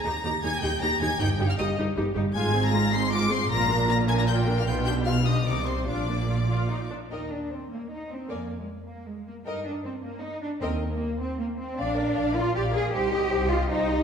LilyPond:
<<
  \new Staff \with { instrumentName = "Violin section" } { \time 3/4 \key ees \major \tempo 4 = 155 bes'''8 bes'''8 aes'''8 g'''8 bes'''8 aes'''8 | g'''8. f'''16 ees'''8 r4. | aes'''8. bes'''8. c''''8 d''''8 c''''8 | bes'''4 bes'''8 aes'''16 bes'''16 g'''8. f'''16 |
g'''8 g'''8 f'''8 ees'''8 d'''8 c'''8 | d'''2~ d'''8 r8 | g''8 r2 r8 | aes''8 r2 r8 |
g''8 r2 r8 | g''8 r2 r8 | d''8 f''8 d''8 f''8 d''8 f''8 | g''8 ees''8 g''8 ees''8 g''8 ees''8 | }
  \new Staff \with { instrumentName = "Violin section" } { \time 3/4 \key ees \major bes''8 bes''8 aes''8 g''8 bes''8 aes''8 | g''8. f''16 ees''8 r4. | aes''8. bes''8. c'''8 d'''8 c'''8 | bes''4 bes''8 aes''16 bes''16 g''8. f''16 |
g''8 g''8 f''8 ees''8 d''8 c''8 | d''2~ d''8 r8 | ees''8 r2 r8 | d''8 r2 r8 |
ees''8 r2 r8 | ees''8 r2 r8 | f''8 d''8 f''8 d''8 f''8 d''8 | c''8 ees''8 c''8 ees''8 c''8 ees''8 | }
  \new Staff \with { instrumentName = "Viola section" } { \time 3/4 \key ees \major <ees' g'>8 <ees' g'>8 <ees' g'>8 <ees' g'>8 <ees' g'>8 <ees' g'>8 | <ees' g'>8 <ees' g'>8 <ees' g'>8 <ees' g'>8 <ees' g'>8 <ees' g'>8 | <aes f'>8 <c' aes'>8 <aes f'>8 <c' aes'>8 <aes f'>8 <c' aes'>8 | <bes f'>8 <d' bes'>8 <bes f'>8 <d' bes'>8 <bes f'>8 <d' bes'>8 |
<b f'>8 <d' g'>8 <b f'>8 <d' g'>8 <ees ees'>8 <g c'>8 | <d' f'>8 <bes d'>8 f'8 f'8 ees'8 d'8 | bes'8 r2 r8 | bes'8 r2 r8 |
bes'8 r2 r8 | bes'8 r2 r8 | d''8 bes'8 d''8 bes'8 d''8 bes'8 | ees'8 g'8 ees'8 g'8 ees'8 g'8 | }
  \new Staff \with { instrumentName = "Cello section" } { \time 3/4 \key ees \major ees,8 ees,8 ees,8 ees,8 ees,8 ees,8 | g,8 g,8 g,8 g,8 g,8 g,8 | aes,2. | bes,2. |
b,2 c4 | bes,2~ bes,8 r8 | ees'8 d'8 c'8 bes8 ees'8 c'8 | bes8. aes8. bes8 aes8 bes8 |
ees'8 d'8 c'8 bes8 ees'8 d'8 | c'8. bes8. c'8 bes8 c'8 | d'4. f'8 g'8 aes'8 | g'4. f'8 ees'4 | }
  \new Staff \with { instrumentName = "Double bass section" } { \clef bass \time 3/4 \key ees \major ees,8 ees,8 ees,8 ees,8 ees,8 ees,8 | g,,8 g,,8 g,,8 g,,8 g,,8 g,,8 | aes,,2. | bes,,2. |
b,,2 c,4 | bes,,2~ bes,,8 r8 | ees,4 r2 | f,4 r2 |
g,4 r2 | ees,4 r2 | bes,,4 bes,,4 bes,,4 | c,4 c,4 c,4 | }
>>